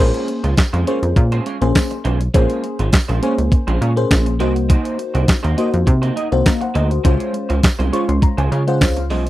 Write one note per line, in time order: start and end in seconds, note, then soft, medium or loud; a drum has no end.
0.00 0.12 A#1 loud
0.00 0.26 G#3 medium
0.00 0.42 A#3 loud
0.00 0.26 C#4 medium
0.00 0.42 C#4 medium
0.00 0.26 F4 medium
0.00 0.42 G#4 medium
0.00 0.26 C5 medium
0.00 0.42 C5 loud
0.14 closed hi-hat medium
0.28 muted clean electric guitar stroke soft
0.28 closed hi-hat medium
0.44 0.55 C#2 medium
0.44 0.54 G#3 soft
0.44 0.54 C#4 soft
0.44 0.53 F4 medium
0.44 0.53 C5 medium
0.44 closed hi-hat medium
0.57 muted clean electric guitar stroke soft
0.57 kick loud
0.57 snare loud
0.57 clap medium
0.57 closed hi-hat medium
0.57 tambourine medium
0.73 0.85 F2 medium
0.73 0.86 G#3 medium
0.73 0.86 C#4 medium
0.73 0.85 F4 medium
0.73 0.85 C5 medium
0.73 closed hi-hat soft
0.87 0.98 G#3 medium
0.87 1.23 A#3 medium
0.87 1.23 C#4 medium
0.87 0.98 C#4 medium
0.87 0.98 F4 medium
0.87 1.23 G#4 medium
0.87 1.23 C5 medium
0.87 0.98 C#5 medium
0.87 closed hi-hat medium
1.03 1.14 F2 medium
1.03 closed hi-hat medium
1.16 1.40 A#2 loud
1.16 muted clean electric guitar stroke soft
1.16 kick loud
1.16 closed hi-hat medium
1.32 1.44 G#3 medium
1.32 1.44 C#4 medium
1.32 1.44 F4 medium
1.32 1.44 C5 medium
1.32 closed hi-hat medium
1.46 1.56 G#3 medium
1.46 1.57 C#4 medium
1.46 1.57 F4 medium
1.46 1.57 C#5 medium
1.46 closed hi-hat medium
1.61 1.73 A#1 loud
1.61 1.96 A#3 medium
1.61 1.96 C#4 medium
1.61 1.96 G#4 medium
1.61 1.97 C5 loud
1.61 muted clean electric guitar stroke soft
1.61 closed hi-hat soft
1.75 kick loud
1.75 snare loud
1.75 clap loud
1.75 closed hi-hat medium
1.75 tambourine medium
1.91 muted clean electric guitar stroke soft
1.91 closed hi-hat medium
2.04 2.29 B1 loud
2.04 2.18 G#3 medium
2.04 2.18 C#4 loud
2.04 2.19 F4 loud
2.04 2.19 C5 medium
2.04 closed hi-hat medium
2.20 muted clean electric guitar stroke soft
2.20 closed hi-hat medium
2.34 2.47 A#1 loud
2.34 2.61 G#3 medium
2.34 2.77 A#3 loud
2.34 2.77 C#4 medium
2.34 2.61 C#4 medium
2.34 2.62 F4 loud
2.34 2.77 G#4 medium
2.34 2.78 C5 loud
2.34 2.62 C5 medium
2.34 kick loud
2.34 closed hi-hat loud
2.50 closed hi-hat medium
2.64 muted clean electric guitar stroke medium
2.64 closed hi-hat medium
2.79 2.90 G#1 loud
2.79 2.89 G#3 medium
2.79 2.89 C#4 medium
2.79 2.89 F4 medium
2.79 2.89 C5 medium
2.79 closed hi-hat medium
2.93 muted clean electric guitar stroke soft
2.93 kick loud
2.93 snare loud
2.93 clap medium
2.93 closed hi-hat medium
2.93 tambourine medium
3.08 3.20 A#1 loud
3.08 3.21 G#3 medium
3.08 3.21 C#4 medium
3.08 3.21 F4 medium
3.08 3.21 C5 medium
3.08 closed hi-hat medium
3.22 3.33 G#3 medium
3.22 3.58 A#3 medium
3.22 3.58 C#4 medium
3.22 3.33 C#4 medium
3.22 3.33 F4 medium
3.22 3.58 G#4 medium
3.22 3.58 C5 medium
3.22 3.34 C#5 medium
3.22 closed hi-hat medium
3.38 3.49 C#2 medium
3.38 muted clean electric guitar stroke soft
3.38 closed hi-hat medium
3.52 muted clean electric guitar stroke soft
3.52 kick loud
3.52 closed hi-hat medium
3.67 3.79 A#1 loud
3.67 3.80 G#3 medium
3.67 3.80 C#4 medium
3.67 3.80 F4 medium
3.67 3.79 C5 medium
3.67 closed hi-hat soft
3.81 4.05 A#2 loud
3.81 3.92 G#3 medium
3.81 3.92 C#4 medium
3.81 3.92 F4 medium
3.81 3.92 C#5 medium
3.81 closed hi-hat medium
3.96 4.32 A#3 loud
3.96 4.32 C#4 medium
3.96 4.32 G#4 medium
3.96 4.32 C5 loud
3.96 muted clean electric guitar stroke soft
3.96 closed hi-hat soft
4.11 4.42 A#1 medium
4.11 kick loud
4.11 snare loud
4.11 clap medium
4.11 closed hi-hat medium
4.11 tambourine medium
4.26 muted clean electric guitar stroke soft
4.26 closed hi-hat medium
4.40 4.77 C2 loud
4.40 5.34 A#3 medium
4.40 4.53 A#3 medium
4.40 4.54 D#4 medium
4.40 5.35 D#4 medium
4.40 5.35 F#4 medium
4.40 4.54 F#4 loud
4.40 5.35 C5 medium
4.40 4.54 C5 loud
4.40 closed hi-hat medium
4.55 muted clean electric guitar stroke soft
4.55 closed hi-hat medium
4.69 4.96 A#3 medium
4.69 4.97 D#4 medium
4.69 4.97 F#4 medium
4.69 4.97 C5 loud
4.69 kick loud
4.69 closed hi-hat loud
4.85 closed hi-hat medium
4.99 muted clean electric guitar stroke soft
4.99 closed hi-hat medium
5.14 5.26 C2 loud
5.14 5.24 A#3 medium
5.14 5.24 D#4 medium
5.14 5.24 F#4 medium
5.14 5.24 C5 medium
5.14 closed hi-hat medium
5.28 kick loud
5.28 snare loud
5.28 clap medium
5.28 closed hi-hat medium
5.28 tambourine medium
5.43 5.55 D#2 loud
5.43 5.56 A#3 medium
5.43 5.56 D#4 medium
5.43 5.56 F#4 medium
5.43 5.55 C5 medium
5.43 closed hi-hat medium
5.57 5.68 A#3 medium
5.57 5.93 A#3 medium
5.57 5.68 D#4 medium
5.57 5.93 D#4 medium
5.57 5.68 F#4 medium
5.57 5.93 F#4 medium
5.57 5.94 C5 medium
5.57 5.68 D#5 medium
5.57 closed hi-hat medium
5.72 5.85 F2 medium
5.72 muted clean electric guitar stroke soft
5.72 closed hi-hat medium
5.86 6.11 C3 loud
5.86 muted clean electric guitar stroke soft
5.86 kick loud
5.86 closed hi-hat medium
6.02 6.15 A#3 medium
6.02 6.15 D#4 medium
6.02 6.14 F#4 medium
6.02 6.14 C5 medium
6.02 closed hi-hat medium
6.16 6.27 A#3 medium
6.16 6.27 D#4 medium
6.16 6.27 F#4 medium
6.16 6.27 D#5 medium
6.16 closed hi-hat medium
6.31 6.43 C2 medium
6.31 6.67 A#3 medium
6.31 6.67 D#4 medium
6.31 6.46 F#4 medium
6.31 6.46 C5 medium
6.31 muted clean electric guitar stroke soft
6.31 closed hi-hat soft
6.46 6.61 F5 medium
6.46 6.61 A#5 medium
6.46 kick loud
6.46 snare loud
6.46 clap medium
6.46 closed hi-hat medium
6.46 tambourine medium
6.61 6.75 C5 medium
6.61 6.75 F#5 medium
6.61 muted clean electric guitar stroke medium
6.61 closed hi-hat medium
6.74 6.99 D2 loud
6.74 6.88 A#3 medium
6.74 6.89 D#4 medium
6.74 6.89 F#4 medium
6.74 6.91 A#4 medium
6.74 6.89 C5 medium
6.74 6.90 D#5 medium
6.74 closed hi-hat medium
6.90 7.19 F#4 soft
6.90 7.04 C5 medium
6.90 muted clean electric guitar stroke soft
6.90 closed hi-hat medium
7.04 7.17 C#2 loud
7.04 7.32 G#3 medium
7.04 7.48 G#3 medium
7.04 7.32 C#4 medium
7.04 7.48 C#4 medium
7.04 7.32 F4 medium
7.04 7.48 F4 medium
7.04 7.32 C5 medium
7.04 7.48 C5 loud
7.04 kick loud
7.04 closed hi-hat loud
7.20 closed hi-hat medium
7.33 muted clean electric guitar stroke soft
7.33 closed hi-hat medium
7.49 7.61 C#2 loud
7.49 7.59 G#3 soft
7.49 7.59 C#4 medium
7.49 7.59 F4 medium
7.49 7.59 C5 medium
7.49 closed hi-hat medium
7.63 muted clean electric guitar stroke soft
7.63 kick loud
7.63 snare loud
7.63 clap medium
7.63 closed hi-hat medium
7.63 tambourine medium
7.79 7.90 C2 medium
7.79 7.91 G#3 medium
7.79 7.91 C#4 medium
7.79 7.91 F4 medium
7.79 7.91 C5 medium
7.79 closed hi-hat medium
7.92 8.03 G#3 medium
7.92 8.28 G#3 medium
7.92 8.03 C#4 medium
7.92 8.29 C#4 medium
7.92 8.29 F4 medium
7.92 8.04 F4 medium
7.92 8.29 C5 medium
7.92 8.04 C#5 medium
7.92 8.07 C#6 medium
7.92 closed hi-hat medium
8.08 8.20 C#2 medium
8.08 8.21 C6 medium
8.08 muted clean electric guitar stroke soft
8.08 closed hi-hat medium
8.22 8.37 A#5 medium
8.22 muted clean electric guitar stroke medium
8.22 kick loud
8.22 closed hi-hat medium
8.37 8.49 C#2 loud
8.37 8.50 G#3 medium
8.37 8.50 C#4 medium
8.37 8.50 F4 medium
8.37 8.50 C5 medium
8.37 8.66 G#5 medium
8.37 closed hi-hat soft
8.51 8.83 C#3 medium
8.51 8.62 G#3 medium
8.51 8.63 C#4 medium
8.51 8.63 F4 medium
8.51 8.63 C#5 medium
8.51 closed hi-hat medium
8.67 9.02 G#3 medium
8.67 9.02 C#4 medium
8.67 9.02 F4 medium
8.67 9.03 C5 loud
8.67 8.80 F#5 medium
8.67 muted clean electric guitar stroke soft
8.67 closed hi-hat soft
8.81 9.12 C#2 medium
8.81 9.09 F5 medium
8.81 kick loud
8.81 snare loud
8.81 clap loud
8.81 closed hi-hat medium
8.81 tambourine medium
8.97 muted clean electric guitar stroke medium
8.97 closed hi-hat medium
9.10 9.30 B1 loud
9.10 9.24 G#3 medium
9.10 9.24 C#4 loud
9.10 9.24 F4 medium
9.10 9.25 C5 medium
9.10 9.30 D#5 medium
9.10 open hi-hat medium
9.26 muted clean electric guitar stroke soft
9.26 closed hi-hat medium